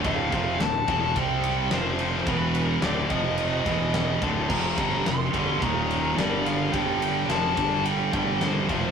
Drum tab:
CC |--------|--------|x-------|--------|
RD |xxxxxxxx|xxxxxxxx|-xxxxxxx|xxxxxxxx|
SD |--o---o-|--o---o-|--o---o-|--o---o-|
BD |oo-oo---|o--o-o-o|oo-oo---|o--o-o-o|